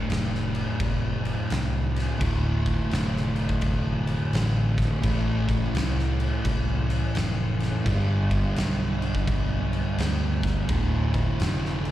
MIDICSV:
0, 0, Header, 1, 4, 480
1, 0, Start_track
1, 0, Key_signature, -1, "minor"
1, 0, Tempo, 706714
1, 1496, Time_signature, 4, 2, 24, 8
1, 8091, End_track
2, 0, Start_track
2, 0, Title_t, "Distorted electric guitar"
2, 0, Program_c, 0, 30
2, 0, Note_on_c, 0, 38, 95
2, 0, Note_on_c, 0, 45, 104
2, 0, Note_on_c, 0, 50, 100
2, 1480, Note_off_c, 0, 38, 0
2, 1489, Note_off_c, 0, 45, 0
2, 1489, Note_on_c, 0, 38, 108
2, 1495, Note_off_c, 0, 50, 0
2, 1497, Note_on_c, 0, 45, 108
2, 1506, Note_on_c, 0, 50, 105
2, 3392, Note_off_c, 0, 45, 0
2, 3398, Note_off_c, 0, 38, 0
2, 3400, Note_on_c, 0, 45, 102
2, 3409, Note_off_c, 0, 50, 0
2, 3410, Note_on_c, 0, 52, 105
2, 3418, Note_on_c, 0, 57, 109
2, 5319, Note_off_c, 0, 45, 0
2, 5324, Note_off_c, 0, 52, 0
2, 5327, Note_on_c, 0, 43, 98
2, 5328, Note_off_c, 0, 57, 0
2, 5335, Note_on_c, 0, 50, 101
2, 5342, Note_on_c, 0, 55, 114
2, 7246, Note_off_c, 0, 43, 0
2, 7250, Note_off_c, 0, 50, 0
2, 7251, Note_on_c, 0, 38, 106
2, 7254, Note_off_c, 0, 55, 0
2, 7260, Note_on_c, 0, 45, 96
2, 7271, Note_on_c, 0, 50, 113
2, 8091, Note_off_c, 0, 38, 0
2, 8091, Note_off_c, 0, 45, 0
2, 8091, Note_off_c, 0, 50, 0
2, 8091, End_track
3, 0, Start_track
3, 0, Title_t, "Picked electric bass"
3, 0, Program_c, 1, 34
3, 65, Note_on_c, 1, 29, 96
3, 433, Note_off_c, 1, 29, 0
3, 543, Note_on_c, 1, 29, 97
3, 912, Note_off_c, 1, 29, 0
3, 1024, Note_on_c, 1, 36, 96
3, 1392, Note_off_c, 1, 36, 0
3, 1502, Note_on_c, 1, 26, 98
3, 1870, Note_off_c, 1, 26, 0
3, 1979, Note_on_c, 1, 29, 96
3, 2348, Note_off_c, 1, 29, 0
3, 2459, Note_on_c, 1, 29, 99
3, 2828, Note_off_c, 1, 29, 0
3, 2938, Note_on_c, 1, 33, 97
3, 3308, Note_off_c, 1, 33, 0
3, 3419, Note_on_c, 1, 33, 103
3, 3789, Note_off_c, 1, 33, 0
3, 3900, Note_on_c, 1, 36, 100
3, 4269, Note_off_c, 1, 36, 0
3, 4381, Note_on_c, 1, 36, 95
3, 4751, Note_off_c, 1, 36, 0
3, 4862, Note_on_c, 1, 29, 98
3, 5231, Note_off_c, 1, 29, 0
3, 5340, Note_on_c, 1, 31, 104
3, 5711, Note_off_c, 1, 31, 0
3, 5815, Note_on_c, 1, 35, 103
3, 6188, Note_off_c, 1, 35, 0
3, 6301, Note_on_c, 1, 35, 98
3, 6672, Note_off_c, 1, 35, 0
3, 6776, Note_on_c, 1, 38, 94
3, 7150, Note_off_c, 1, 38, 0
3, 7262, Note_on_c, 1, 26, 107
3, 7634, Note_off_c, 1, 26, 0
3, 7744, Note_on_c, 1, 29, 101
3, 8091, Note_off_c, 1, 29, 0
3, 8091, End_track
4, 0, Start_track
4, 0, Title_t, "Drums"
4, 66, Note_on_c, 9, 49, 86
4, 81, Note_on_c, 9, 38, 112
4, 134, Note_off_c, 9, 49, 0
4, 149, Note_off_c, 9, 38, 0
4, 237, Note_on_c, 9, 38, 35
4, 305, Note_off_c, 9, 38, 0
4, 371, Note_on_c, 9, 49, 67
4, 439, Note_off_c, 9, 49, 0
4, 542, Note_on_c, 9, 49, 90
4, 543, Note_on_c, 9, 36, 111
4, 610, Note_off_c, 9, 49, 0
4, 611, Note_off_c, 9, 36, 0
4, 850, Note_on_c, 9, 49, 68
4, 918, Note_off_c, 9, 49, 0
4, 1020, Note_on_c, 9, 49, 86
4, 1035, Note_on_c, 9, 38, 112
4, 1088, Note_off_c, 9, 49, 0
4, 1103, Note_off_c, 9, 38, 0
4, 1334, Note_on_c, 9, 49, 66
4, 1349, Note_on_c, 9, 38, 36
4, 1402, Note_off_c, 9, 49, 0
4, 1416, Note_off_c, 9, 38, 0
4, 1499, Note_on_c, 9, 49, 89
4, 1501, Note_on_c, 9, 36, 117
4, 1566, Note_off_c, 9, 49, 0
4, 1568, Note_off_c, 9, 36, 0
4, 1807, Note_on_c, 9, 36, 85
4, 1807, Note_on_c, 9, 49, 65
4, 1875, Note_off_c, 9, 36, 0
4, 1875, Note_off_c, 9, 49, 0
4, 1979, Note_on_c, 9, 49, 79
4, 1994, Note_on_c, 9, 38, 111
4, 2047, Note_off_c, 9, 49, 0
4, 2062, Note_off_c, 9, 38, 0
4, 2150, Note_on_c, 9, 38, 34
4, 2218, Note_off_c, 9, 38, 0
4, 2280, Note_on_c, 9, 49, 60
4, 2348, Note_off_c, 9, 49, 0
4, 2371, Note_on_c, 9, 36, 81
4, 2439, Note_off_c, 9, 36, 0
4, 2454, Note_on_c, 9, 49, 80
4, 2459, Note_on_c, 9, 36, 115
4, 2522, Note_off_c, 9, 49, 0
4, 2527, Note_off_c, 9, 36, 0
4, 2765, Note_on_c, 9, 49, 64
4, 2833, Note_off_c, 9, 49, 0
4, 2942, Note_on_c, 9, 49, 81
4, 2957, Note_on_c, 9, 38, 124
4, 3010, Note_off_c, 9, 49, 0
4, 3024, Note_off_c, 9, 38, 0
4, 3246, Note_on_c, 9, 36, 83
4, 3251, Note_on_c, 9, 49, 60
4, 3266, Note_on_c, 9, 38, 35
4, 3314, Note_off_c, 9, 36, 0
4, 3319, Note_off_c, 9, 49, 0
4, 3334, Note_off_c, 9, 38, 0
4, 3420, Note_on_c, 9, 36, 112
4, 3421, Note_on_c, 9, 49, 90
4, 3488, Note_off_c, 9, 36, 0
4, 3489, Note_off_c, 9, 49, 0
4, 3727, Note_on_c, 9, 36, 92
4, 3730, Note_on_c, 9, 49, 67
4, 3795, Note_off_c, 9, 36, 0
4, 3798, Note_off_c, 9, 49, 0
4, 3903, Note_on_c, 9, 49, 92
4, 3918, Note_on_c, 9, 38, 118
4, 3971, Note_off_c, 9, 49, 0
4, 3986, Note_off_c, 9, 38, 0
4, 4070, Note_on_c, 9, 38, 35
4, 4138, Note_off_c, 9, 38, 0
4, 4210, Note_on_c, 9, 49, 67
4, 4278, Note_off_c, 9, 49, 0
4, 4380, Note_on_c, 9, 36, 114
4, 4385, Note_on_c, 9, 49, 93
4, 4448, Note_off_c, 9, 36, 0
4, 4453, Note_off_c, 9, 49, 0
4, 4686, Note_on_c, 9, 49, 70
4, 4754, Note_off_c, 9, 49, 0
4, 4856, Note_on_c, 9, 49, 93
4, 4871, Note_on_c, 9, 38, 116
4, 4924, Note_off_c, 9, 49, 0
4, 4938, Note_off_c, 9, 38, 0
4, 5164, Note_on_c, 9, 49, 66
4, 5179, Note_on_c, 9, 38, 34
4, 5232, Note_off_c, 9, 49, 0
4, 5247, Note_off_c, 9, 38, 0
4, 5337, Note_on_c, 9, 49, 85
4, 5338, Note_on_c, 9, 36, 111
4, 5405, Note_off_c, 9, 49, 0
4, 5406, Note_off_c, 9, 36, 0
4, 5643, Note_on_c, 9, 49, 67
4, 5645, Note_on_c, 9, 36, 86
4, 5711, Note_off_c, 9, 49, 0
4, 5713, Note_off_c, 9, 36, 0
4, 5816, Note_on_c, 9, 49, 85
4, 5831, Note_on_c, 9, 38, 112
4, 5884, Note_off_c, 9, 49, 0
4, 5899, Note_off_c, 9, 38, 0
4, 6126, Note_on_c, 9, 49, 66
4, 6194, Note_off_c, 9, 49, 0
4, 6213, Note_on_c, 9, 36, 82
4, 6280, Note_off_c, 9, 36, 0
4, 6300, Note_on_c, 9, 36, 115
4, 6303, Note_on_c, 9, 49, 83
4, 6367, Note_off_c, 9, 36, 0
4, 6371, Note_off_c, 9, 49, 0
4, 6608, Note_on_c, 9, 49, 63
4, 6676, Note_off_c, 9, 49, 0
4, 6781, Note_on_c, 9, 49, 84
4, 6796, Note_on_c, 9, 38, 115
4, 6849, Note_off_c, 9, 49, 0
4, 6864, Note_off_c, 9, 38, 0
4, 7087, Note_on_c, 9, 36, 86
4, 7090, Note_on_c, 9, 49, 62
4, 7104, Note_on_c, 9, 38, 33
4, 7155, Note_off_c, 9, 36, 0
4, 7157, Note_off_c, 9, 49, 0
4, 7172, Note_off_c, 9, 38, 0
4, 7259, Note_on_c, 9, 49, 84
4, 7260, Note_on_c, 9, 36, 116
4, 7327, Note_off_c, 9, 49, 0
4, 7328, Note_off_c, 9, 36, 0
4, 7567, Note_on_c, 9, 36, 95
4, 7569, Note_on_c, 9, 49, 66
4, 7635, Note_off_c, 9, 36, 0
4, 7637, Note_off_c, 9, 49, 0
4, 7740, Note_on_c, 9, 49, 87
4, 7755, Note_on_c, 9, 38, 113
4, 7808, Note_off_c, 9, 49, 0
4, 7823, Note_off_c, 9, 38, 0
4, 7915, Note_on_c, 9, 38, 35
4, 7983, Note_off_c, 9, 38, 0
4, 8049, Note_on_c, 9, 49, 66
4, 8091, Note_off_c, 9, 49, 0
4, 8091, End_track
0, 0, End_of_file